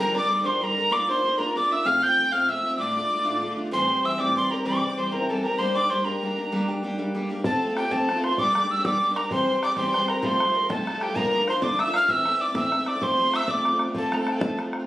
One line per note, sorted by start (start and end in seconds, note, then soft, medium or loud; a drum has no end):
0.00 0.14 G2 medium
0.00 0.15 D3 medium
0.00 0.14 F3 medium
0.00 0.15 G3 medium
0.00 0.14 D4 medium
0.00 0.13 A#4 medium
0.00 0.16 A#4 medium
0.00 0.15 A#5 medium
0.14 0.28 D3 soft
0.14 0.28 G3 soft
0.14 0.29 D4 soft
0.14 0.29 A#4 soft
0.14 0.44 D5 medium
0.14 0.48 D6 medium
0.29 0.44 D3 medium
0.29 0.43 G3 medium
0.29 0.43 D4 medium
0.29 0.43 A#4 medium
0.44 0.62 G2 soft
0.44 0.60 D3 medium
0.44 0.62 F3 soft
0.44 0.61 G3 medium
0.44 0.61 D4 medium
0.44 0.62 A#4 medium
0.44 0.63 C5 medium
0.44 0.65 C6 medium
0.61 0.76 D3 medium
0.61 0.76 G3 medium
0.61 0.76 D4 soft
0.61 0.93 A#4 medium
0.61 0.75 A#4 medium
0.61 0.94 A#5 medium
0.76 0.90 D3 soft
0.76 0.91 G3 soft
0.76 0.90 D4 soft
0.76 0.91 A#4 soft
0.91 1.08 A#3 medium
0.91 1.09 D4 medium
0.91 1.08 F4 medium
0.91 1.07 A#4 medium
0.91 1.10 D5 medium
0.91 1.09 D6 medium
1.08 1.23 D4 soft
1.08 1.23 F4 soft
1.08 1.23 A#4 soft
1.08 1.39 C5 medium
1.08 1.40 C6 medium
1.23 1.38 A#3 medium
1.23 1.38 D4 medium
1.23 1.37 F4 medium
1.23 1.37 A#4 medium
1.38 1.54 A#3 soft
1.38 1.55 D4 soft
1.38 1.56 F4 medium
1.38 1.58 A#4 medium
1.38 1.55 A#4 medium
1.38 1.56 A#5 medium
1.55 1.70 A#3 soft
1.55 1.70 D4 soft
1.55 1.69 F4 medium
1.55 1.68 A#4 medium
1.55 1.73 D5 medium
1.55 1.74 D6 medium
1.70 1.84 D4 soft
1.70 1.85 F4 soft
1.70 1.85 A#4 soft
1.70 1.88 E5 medium
1.70 1.88 E6 medium
1.84 2.02 A2 medium
1.84 2.02 F3 medium
1.84 2.01 A3 medium
1.84 2.02 C4 medium
1.84 2.00 F4 medium
1.84 2.04 F5 medium
1.84 2.05 F6 loud
2.01 2.17 A3 soft
2.01 2.17 C4 soft
2.01 2.17 F4 soft
2.01 2.33 G5 medium
2.01 2.34 G6 loud
2.17 2.32 F3 medium
2.17 2.31 A3 medium
2.17 2.32 C4 medium
2.17 2.31 F4 medium
2.31 2.50 A2 soft
2.31 2.47 F3 soft
2.31 2.49 A3 medium
2.31 2.48 C4 medium
2.31 2.49 F4 soft
2.31 2.51 F5 medium
2.31 2.51 F6 medium
2.48 2.64 F3 medium
2.48 2.63 A3 medium
2.48 2.64 C4 soft
2.48 2.62 F4 medium
2.48 2.63 E5 medium
2.48 2.79 E6 loud
2.63 2.77 A3 soft
2.63 2.78 C4 soft
2.63 2.78 F4 soft
2.63 2.77 E5 medium
2.78 2.96 D2 medium
2.78 2.96 A2 medium
2.78 2.96 D3 medium
2.78 2.96 A3 medium
2.78 2.95 D4 medium
2.78 2.94 F4 medium
2.78 3.53 D5 medium
2.78 3.54 D6 medium
2.95 3.09 D3 soft
2.95 3.10 A3 soft
2.95 3.10 D4 soft
2.95 3.10 F4 soft
3.10 3.24 D3 soft
3.10 3.24 A3 soft
3.10 3.23 D4 soft
3.10 3.23 F4 medium
3.24 3.43 D2 medium
3.24 3.43 A2 medium
3.24 3.40 D3 medium
3.24 3.41 A3 medium
3.24 3.42 D4 medium
3.24 3.42 F4 medium
3.41 3.57 D3 medium
3.41 3.57 A3 medium
3.41 3.56 D4 medium
3.41 3.55 F4 medium
3.57 3.71 D3 soft
3.57 3.71 A3 soft
3.57 3.71 D4 soft
3.57 3.72 F4 medium
3.71 3.89 A2 medium
3.71 3.89 E3 medium
3.71 3.89 G3 medium
3.71 3.88 C4 medium
3.71 3.87 G4 medium
3.71 4.06 C5 medium
3.71 4.07 C6 medium
3.88 4.03 G3 soft
3.88 4.03 C4 soft
3.88 4.04 G4 soft
4.03 4.18 E3 medium
4.03 4.18 G3 medium
4.03 4.18 C4 medium
4.03 4.17 G4 medium
4.03 4.20 E5 medium
4.03 4.22 E6 medium
4.18 4.37 A2 soft
4.18 4.34 E3 medium
4.18 4.35 G3 medium
4.18 4.35 C4 medium
4.18 4.36 G4 medium
4.18 4.54 D5 medium
4.18 4.37 D6 medium
4.35 4.51 E3 medium
4.35 4.51 G3 medium
4.35 4.50 C4 medium
4.35 4.49 G4 medium
4.35 4.52 C6 medium
4.50 4.64 G3 soft
4.50 4.65 C4 soft
4.50 4.65 G4 soft
4.50 4.67 A#4 medium
4.50 4.65 A#5 medium
4.65 4.83 C3 medium
4.65 4.83 E3 medium
4.65 4.83 G3 medium
4.65 4.82 C4 medium
4.65 4.81 G4 medium
4.65 4.99 D5 medium
4.65 4.95 D6 medium
4.82 4.97 G3 soft
4.82 4.97 C4 soft
4.82 4.97 G4 soft
4.97 5.11 E3 medium
4.97 5.11 G3 soft
4.97 5.11 C4 soft
4.97 5.10 G4 medium
4.97 5.14 C5 medium
4.97 5.14 C6 medium
5.11 5.30 C3 soft
5.11 5.28 E3 medium
5.11 5.29 G3 medium
5.11 5.29 C4 medium
5.11 5.29 G4 medium
5.11 5.31 A#4 medium
5.11 5.31 A#5 medium
5.29 5.44 E3 soft
5.29 5.45 G3 medium
5.29 5.44 C4 medium
5.29 5.43 G4 medium
5.29 5.45 A4 medium
5.29 5.45 A5 medium
5.43 5.58 G3 soft
5.43 5.60 C4 soft
5.43 5.59 G4 medium
5.43 5.58 A#4 medium
5.43 5.60 A#5 medium
5.59 5.76 G3 medium
5.59 5.77 A#3 medium
5.59 5.75 D4 medium
5.59 5.74 G4 medium
5.59 5.77 C5 medium
5.59 5.77 C6 medium
5.75 5.90 A#3 soft
5.75 5.91 D4 soft
5.75 5.91 G4 soft
5.75 5.91 D5 medium
5.75 5.92 D6 medium
5.89 6.05 G3 soft
5.89 6.05 A#3 medium
5.89 6.04 D4 medium
5.89 6.04 G4 medium
5.89 6.05 C5 medium
5.89 6.06 C6 medium
6.05 6.20 G3 medium
6.05 6.21 A#3 medium
6.05 6.22 D4 medium
6.05 6.23 G4 medium
6.05 6.65 A#4 soft
6.05 6.69 A#5 medium
6.22 6.37 G3 soft
6.22 6.37 A#3 medium
6.22 6.36 D4 medium
6.22 6.35 G4 medium
6.37 6.51 A#3 soft
6.37 6.51 D4 soft
6.37 6.52 G4 soft
6.52 6.69 G3 medium
6.52 6.69 A#3 medium
6.52 6.68 D4 medium
6.52 6.67 G4 medium
6.68 6.82 A#3 soft
6.68 6.83 D4 medium
6.68 6.83 G4 medium
6.83 6.98 G3 soft
6.83 6.97 A#3 medium
6.83 6.97 D4 medium
6.83 6.96 G4 medium
6.98 7.13 G3 medium
6.98 7.14 A#3 medium
6.98 7.15 D4 medium
6.98 7.15 G4 medium
7.14 7.30 G3 medium
7.14 7.30 A#3 medium
7.14 7.30 D4 medium
7.14 7.29 G4 medium
7.30 7.45 A#3 soft
7.30 7.45 D4 soft
7.30 7.45 G4 soft
7.44 7.60 F3 medium
7.44 7.61 A3 medium
7.44 7.61 C4 medium
7.44 7.62 F4 medium
7.44 7.78 A4 medium
7.44 7.75 A5 medium
7.44 bodhran medium
7.53 bodhran soft
7.61 7.69 F3 soft
7.61 7.69 A3 medium
7.61 7.70 C4 medium
7.61 7.68 F4 medium
7.69 7.83 A3 soft
7.69 7.84 C4 soft
7.69 7.82 F4 soft
7.77 7.93 G4 medium
7.77 7.93 G5 medium
7.77 bodhran medium
7.83 7.91 A3 soft
7.83 7.91 C4 soft
7.83 7.91 F4 medium
7.91 8.08 F3 medium
7.91 8.09 A3 medium
7.91 8.08 C4 medium
7.91 8.09 F4 medium
7.91 8.25 A4 medium
7.91 8.25 A5 medium
7.91 bodhran medium
8.09 8.16 F3 medium
8.09 8.16 A3 medium
8.09 8.16 C4 medium
8.09 8.15 F4 medium
8.09 bodhran soft
8.16 8.31 A3 medium
8.16 8.31 C4 medium
8.16 8.30 F4 medium
8.23 8.37 C5 medium
8.23 8.41 C6 medium
8.23 bodhran soft
8.31 8.39 A3 soft
8.31 8.39 C4 soft
8.31 8.38 F4 soft
8.37 8.55 G3 medium
8.37 8.55 A#3 medium
8.37 8.56 D4 medium
8.37 8.56 G4 medium
8.37 8.81 D5 medium
8.37 8.72 D6 loud
8.37 bodhran medium
8.55 8.63 G3 medium
8.55 8.63 A#3 medium
8.55 8.62 D4 medium
8.55 8.61 G4 medium
8.55 bodhran medium
8.62 8.78 A#3 soft
8.62 8.77 D4 soft
8.62 8.76 G4 soft
8.71 8.87 E6 medium
8.77 8.84 A#3 soft
8.77 8.85 D4 soft
8.77 8.85 G4 soft
8.84 9.01 G3 medium
8.84 9.01 A#3 medium
8.84 9.02 D4 medium
8.84 9.02 G4 medium
8.84 9.14 D5 medium
8.84 9.18 D6 medium
8.84 bodhran medium
9.02 9.09 G3 medium
9.02 9.09 A#3 medium
9.02 9.09 D4 medium
9.02 9.08 G4 medium
9.09 9.24 A#3 soft
9.09 9.24 D4 soft
9.09 9.22 G4 soft
9.16 9.30 A#4 medium
9.16 9.31 A#5 medium
9.16 bodhran medium
9.23 9.31 A#3 soft
9.23 9.31 D4 soft
9.23 9.31 G4 medium
9.31 9.48 C3 medium
9.31 9.46 E3 medium
9.31 9.47 G3 medium
9.31 9.47 C4 medium
9.31 9.48 G4 medium
9.31 9.61 C5 medium
9.31 9.61 C6 loud
9.31 bodhran medium
9.40 bodhran soft
9.47 9.55 E3 medium
9.47 9.55 G3 medium
9.47 9.54 C4 medium
9.47 9.53 G4 medium
9.55 9.70 G3 soft
9.55 9.69 C4 soft
9.55 9.68 G4 soft
9.63 9.70 D5 medium
9.63 9.77 D6 medium
9.63 bodhran medium
9.69 9.76 G3 soft
9.69 9.76 C4 soft
9.69 9.77 G4 soft
9.76 9.94 C3 medium
9.76 9.92 E3 medium
9.76 9.93 G3 medium
9.76 9.93 C4 medium
9.76 9.94 G4 medium
9.76 9.90 C5 medium
9.76 10.11 C6 medium
9.76 bodhran medium
9.88 10.02 D5 medium
9.93 10.01 E3 medium
9.93 10.00 G3 medium
9.93 10.00 C4 medium
9.93 9.98 G4 medium
9.93 bodhran medium
10.00 10.15 G3 soft
10.00 10.14 C4 soft
10.00 10.13 G4 medium
10.00 10.11 C5 medium
10.08 10.26 A#4 medium
10.08 10.27 A#5 medium
10.08 bodhran medium
10.14 10.21 G3 soft
10.14 10.23 C4 soft
10.14 10.23 G4 soft
10.22 10.40 F2 medium
10.22 10.40 C3 medium
10.22 10.38 F3 medium
10.22 10.39 G3 medium
10.22 10.39 A3 medium
10.22 10.40 F4 medium
10.22 10.57 C5 medium
10.22 10.70 C6 medium
10.22 bodhran medium
10.39 10.47 F3 medium
10.39 10.46 G3 medium
10.39 10.45 A3 medium
10.39 10.45 F4 medium
10.39 bodhran medium
10.46 10.62 F3 soft
10.46 10.62 G3 soft
10.46 10.61 A3 soft
10.46 10.60 F4 soft
10.56 10.70 A#4 medium
10.61 10.68 F3 soft
10.61 10.68 G3 soft
10.61 10.69 A3 soft
10.61 10.69 F4 soft
10.69 10.87 F2 medium
10.69 10.87 C3 medium
10.69 10.85 F3 medium
10.69 10.85 G3 medium
10.69 10.86 A3 medium
10.69 10.86 F4 medium
10.69 11.03 A4 medium
10.69 11.04 A5 medium
10.69 bodhran medium
10.86 10.94 F3 medium
10.86 10.94 G3 medium
10.86 10.93 A3 medium
10.86 10.92 F4 medium
10.86 bodhran medium
10.94 11.10 F3 soft
10.94 11.09 G3 soft
10.94 11.08 A3 soft
10.94 11.07 F4 soft
11.01 11.15 G4 medium
11.01 11.18 G5 medium
11.01 bodhran medium
11.09 11.15 F3 soft
11.09 11.16 G3 soft
11.09 11.16 A3 soft
11.09 11.16 F4 medium
11.15 11.33 G2 medium
11.15 11.33 D3 medium
11.15 11.32 F3 medium
11.15 11.32 A#3 medium
11.15 11.33 D4 medium
11.15 11.33 F4 medium
11.15 11.49 A#4 medium
11.15 11.49 A#5 medium
11.15 bodhran medium
11.24 bodhran soft
11.33 11.41 F3 medium
11.33 11.40 A#3 medium
11.33 11.40 D4 medium
11.33 11.39 F4 medium
11.40 11.55 F3 soft
11.40 11.55 A#3 soft
11.40 11.54 D4 soft
11.40 11.53 F4 soft
11.48 11.63 C5 medium
11.48 11.65 C6 medium
11.48 bodhran medium
11.54 11.61 F3 soft
11.54 11.61 A#3 soft
11.54 11.61 D4 medium
11.54 11.61 F4 soft
11.61 11.79 G2 medium
11.61 11.80 D3 medium
11.61 11.77 F3 medium
11.61 11.77 A#3 medium
11.61 11.78 D4 medium
11.61 11.79 F4 medium
11.61 11.81 D5 medium
11.61 11.81 D6 medium
11.61 bodhran medium
11.78 11.86 F3 soft
11.78 11.86 A#3 medium
11.78 11.85 D4 medium
11.78 11.85 F4 medium
11.78 11.95 E5 medium
11.78 11.95 E6 loud
11.78 bodhran medium
11.86 12.01 F3 soft
11.86 12.01 A#3 medium
11.86 12.00 D4 soft
11.86 11.99 F4 medium
11.94 12.08 F5 medium
11.94 12.11 F6 loud
11.94 bodhran medium
12.00 12.08 F3 soft
12.00 12.09 A#3 soft
12.00 12.09 D4 soft
12.00 12.09 F4 soft
12.08 12.26 A2 medium
12.08 12.24 E3 medium
12.08 12.25 A3 medium
12.08 12.25 C4 medium
12.08 12.26 E4 medium
12.08 12.42 E5 medium
12.08 12.43 E6 loud
12.08 bodhran medium
12.25 12.33 E3 medium
12.25 12.32 A3 medium
12.25 12.33 C4 medium
12.25 12.31 E4 medium
12.25 bodhran medium
12.32 12.47 A3 soft
12.32 12.48 C4 soft
12.32 12.46 E4 soft
12.40 12.56 D5 medium
12.40 12.56 D6 loud
12.47 12.54 A3 soft
12.47 12.54 C4 soft
12.47 12.54 E4 soft
12.54 12.72 A2 medium
12.54 12.70 E3 medium
12.54 12.71 A3 medium
12.54 12.71 C4 medium
12.54 12.72 E4 medium
12.54 12.89 E5 medium
12.54 12.89 E6 medium
12.54 bodhran medium
12.71 12.79 E3 medium
12.71 12.79 A3 medium
12.71 12.80 C4 soft
12.71 12.78 E4 medium
12.71 bodhran medium
12.79 12.94 A3 soft
12.79 12.95 C4 soft
12.79 12.93 E4 soft
12.86 13.04 D5 medium
12.86 13.05 D6 medium
12.86 bodhran soft
12.94 13.01 A3 soft
12.94 13.01 C4 soft
12.94 13.02 E4 soft
13.01 13.17 F3 medium
13.01 13.19 A3 medium
13.01 13.18 C4 medium
13.01 13.20 F4 medium
13.01 13.32 C5 medium
13.01 13.37 C6 loud
13.01 bodhran medium
13.10 bodhran soft
13.19 13.26 F3 medium
13.19 13.26 A3 medium
13.19 13.27 C4 medium
13.19 13.25 F4 medium
13.26 13.41 A3 soft
13.26 13.41 C4 soft
13.26 13.40 F4 soft
13.33 13.50 E5 medium
13.33 13.52 E6 medium
13.33 bodhran medium
13.41 13.48 A3 soft
13.41 13.47 C4 soft
13.41 13.48 F4 medium
13.41 bodhran medium
13.48 13.64 F3 medium
13.48 13.65 A3 medium
13.48 13.64 C4 medium
13.48 13.65 F4 medium
13.48 13.80 D5 medium
13.48 13.81 D6 medium
13.48 bodhran medium
13.65 13.72 F3 medium
13.65 13.72 A3 medium
13.65 13.73 C4 medium
13.65 13.71 F4 medium
13.65 bodhran medium
13.72 13.87 A3 medium
13.72 13.88 C4 soft
13.72 13.86 F4 soft
13.79 bodhran medium
13.87 13.94 A3 soft
13.87 13.94 C4 soft
13.87 13.95 F4 soft
13.94 14.10 F3 medium
13.94 14.12 A3 medium
13.94 14.11 C4 medium
13.94 14.12 F4 medium
13.94 14.15 A4 medium
13.94 14.15 A5 medium
13.94 bodhran medium
14.11 14.19 F3 medium
14.11 14.18 A3 medium
14.11 14.19 C4 medium
14.11 14.17 F4 medium
14.11 14.21 A#5 soft
14.11 bodhran medium
14.16 14.32 A3 soft
14.16 14.31 F4 soft
14.16 14.34 A4 medium
14.16 14.34 A5 medium
14.20 14.33 C4 soft
14.27 bodhran medium
14.32 14.40 A3 medium
14.32 14.39 C4 soft
14.32 14.40 F4 soft
14.32 14.56 A4 medium
14.32 14.39 G5 medium
14.38 14.56 F3 medium
14.38 14.57 A3 medium
14.38 14.57 C4 medium
14.38 14.58 F4 medium
14.38 14.59 A5 medium
14.38 bodhran loud
14.57 14.65 F3 medium
14.57 14.64 A3 medium
14.57 14.65 C4 medium
14.57 14.64 F4 medium
14.57 bodhran medium
14.65 14.79 A3 soft
14.65 14.80 C4 soft
14.65 14.78 F4 soft
14.73 bodhran medium
14.79 14.86 A3 soft
14.79 14.86 C4 soft
14.79 14.86 F4 soft